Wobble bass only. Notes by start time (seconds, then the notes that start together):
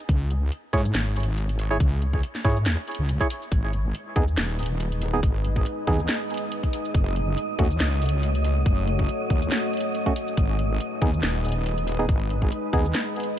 0.09 C#2
0.73 G#2
0.95 G#1
1.80 C#2
2.45 G#2
2.66 D#2
2.99 C#2
3.52 G#1
4.16 D#2
4.38 D#1
5.23 G#1
5.87 D#2
6.95 F#1
7.59 D#2
7.80 C#2
8.66 F#1
9.30 D#2
10.37 G#1
11.02 D#2
11.23 D#1
12.09 G#1
12.73 D#2